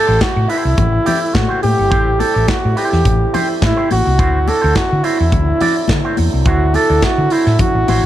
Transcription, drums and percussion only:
0.21 kick loud
0.21 snare loud
0.21 clap medium
0.21 closed hi-hat medium
0.21 high conga medium
0.50 open hi-hat medium
0.78 kick loud
0.78 closed hi-hat medium
0.78 muted conga medium
0.78 low conga medium
1.06 open hi-hat medium
1.06 muted conga soft
1.06 low conga medium
1.35 kick loud
1.35 snare loud
1.35 clap medium
1.35 closed hi-hat medium
1.35 high conga medium
1.63 open hi-hat medium
1.63 high conga medium
1.92 kick loud
1.92 closed hi-hat medium
1.92 muted conga soft
2.20 open hi-hat medium
2.20 muted conga medium
2.48 kick loud
2.48 snare loud
2.48 clap medium
2.48 closed hi-hat medium
2.48 high conga medium
2.77 open hi-hat medium
2.92 snare soft
3.05 kick loud
3.05 closed hi-hat medium
3.05 muted conga soft
3.05 low conga medium
3.34 open hi-hat medium
3.34 muted conga medium
3.34 low conga medium
3.62 kick loud
3.62 snare loud
3.62 clap medium
3.62 closed hi-hat medium
3.62 high conga medium
3.91 open hi-hat medium
3.91 high conga medium
4.19 kick loud
4.19 closed hi-hat medium
4.48 open hi-hat medium
4.48 muted conga medium
4.75 kick loud
4.75 snare loud
4.75 clap medium
4.75 closed hi-hat medium
4.75 high conga medium
5.04 open hi-hat medium
5.32 kick loud
5.32 closed hi-hat medium
5.32 muted conga soft
5.32 low conga medium
5.61 open hi-hat medium
5.61 muted conga soft
5.61 low conga medium
5.88 kick loud
5.88 snare loud
5.88 clap medium
5.88 closed hi-hat medium
5.88 high conga medium
6.17 open hi-hat medium
6.17 high conga medium
6.45 kick loud
6.45 closed hi-hat medium
6.45 muted conga soft
6.74 open hi-hat medium
6.74 muted conga soft
7.02 kick loud
7.02 snare loud
7.02 clap medium
7.02 closed hi-hat medium
7.02 high conga medium
7.30 open hi-hat medium
7.46 snare soft
7.59 kick loud
7.59 closed hi-hat medium
7.59 muted conga soft
7.59 low conga medium
7.88 open hi-hat medium
7.88 muted conga soft
7.88 low conga medium

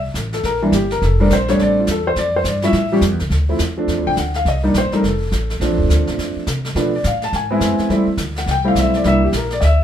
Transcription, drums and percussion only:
0.15 snare medium
0.15 hi-hat pedal medium
0.33 snare soft
0.43 brush sweep soft
0.43 snare soft
0.72 snare medium
0.72 hi-hat pedal medium
0.91 snare soft
1.02 brush sweep soft
1.02 snare soft
1.30 snare medium
1.30 hi-hat pedal medium
1.48 snare soft
1.59 brush sweep soft
1.59 snare soft
1.87 snare medium
1.87 hi-hat pedal medium
2.16 brush sweep soft
2.16 snare soft
2.44 snare medium
2.44 hi-hat pedal medium
2.62 snare soft
2.73 brush sweep medium
2.73 snare soft
3.01 snare medium
3.01 hi-hat pedal medium
3.19 snare soft
3.30 brush sweep soft
3.30 snare soft
3.59 snare medium
3.59 hi-hat pedal medium
3.88 brush sweep soft
3.88 snare soft
4.17 snare medium
4.17 hi-hat pedal soft
4.34 snare soft
4.46 brush sweep soft
4.46 snare soft
4.74 snare medium
4.74 hi-hat pedal medium
4.92 snare soft
5.04 brush sweep soft
5.04 snare soft
5.32 snare medium
5.32 hi-hat pedal medium
5.50 snare soft
5.61 brush sweep soft
5.61 snare soft
5.78 kick medium
5.90 snare medium
5.90 hi-hat pedal medium
6.07 snare soft
6.19 brush sweep soft
6.19 snare soft
6.47 snare medium
6.47 hi-hat pedal medium
6.65 snare soft
6.76 brush sweep soft
6.76 snare soft
7.04 snare medium
7.04 hi-hat pedal medium
7.22 snare soft
7.33 brush sweep soft
7.33 snare soft
7.61 snare medium
7.61 hi-hat pedal soft
7.78 snare soft
7.90 brush sweep soft
7.90 snare soft
8.18 snare medium
8.18 hi-hat pedal medium
8.36 snare soft
8.47 brush sweep soft
8.47 snare soft
8.76 snare medium
8.76 hi-hat pedal medium
8.94 snare soft
9.04 brush sweep soft
9.04 snare soft
9.33 snare medium
9.33 hi-hat pedal medium
9.50 snare soft
9.61 brush sweep soft
9.61 snare soft

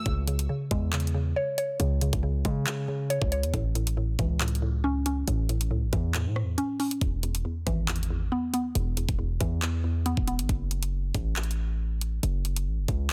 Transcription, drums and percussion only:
0.06 kick loud
0.06 closed hi-hat medium
0.28 closed hi-hat medium
0.39 closed hi-hat medium
0.71 kick loud
0.71 closed hi-hat medium
0.93 clap loud
0.93 closed hi-hat medium
1.00 closed hi-hat medium
1.07 closed hi-hat soft
1.58 closed hi-hat medium
1.80 closed hi-hat medium
2.01 closed hi-hat medium
2.13 kick medium
2.13 closed hi-hat medium
2.45 kick loud
2.45 closed hi-hat medium
2.67 clap loud
2.67 closed hi-hat medium
3.10 closed hi-hat medium
3.22 kick medium
3.32 closed hi-hat medium
3.43 closed hi-hat medium
3.54 kick loud
3.54 closed hi-hat medium
3.75 closed hi-hat medium
3.87 closed hi-hat medium
4.19 kick loud
4.19 closed hi-hat medium
4.41 clap loud
4.41 closed hi-hat medium
4.48 closed hi-hat medium
4.55 closed hi-hat soft
5.06 closed hi-hat medium
5.28 closed hi-hat medium
5.49 closed hi-hat medium
5.61 closed hi-hat medium
5.93 kick loud
5.93 closed hi-hat medium
6.14 clap loud
6.14 closed hi-hat medium
6.36 cross-stick medium
6.58 closed hi-hat medium
6.80 open hi-hat medium
6.91 closed hi-hat medium
7.01 kick loud
7.01 closed hi-hat medium
7.23 closed hi-hat medium
7.35 closed hi-hat medium
7.67 kick loud
7.67 closed hi-hat medium
7.88 clap loud
7.88 closed hi-hat medium
7.96 closed hi-hat medium
8.03 closed hi-hat soft
8.54 closed hi-hat medium
8.75 closed hi-hat medium
8.97 closed hi-hat medium
9.09 kick medium
9.09 closed hi-hat medium
9.41 kick loud
9.41 closed hi-hat medium
9.62 clap loud
9.62 closed hi-hat medium
10.06 closed hi-hat medium
10.17 kick medium
10.28 closed hi-hat medium
10.39 closed hi-hat medium
10.49 kick loud
10.49 closed hi-hat medium
10.71 closed hi-hat medium
10.83 closed hi-hat medium
11.14 kick loud
11.14 closed hi-hat medium
11.36 clap loud
11.36 closed hi-hat medium
11.43 closed hi-hat medium
11.51 closed hi-hat soft
12.01 closed hi-hat medium
12.23 closed hi-hat medium
12.45 closed hi-hat medium
12.56 closed hi-hat medium
12.88 kick medium
12.88 closed hi-hat medium

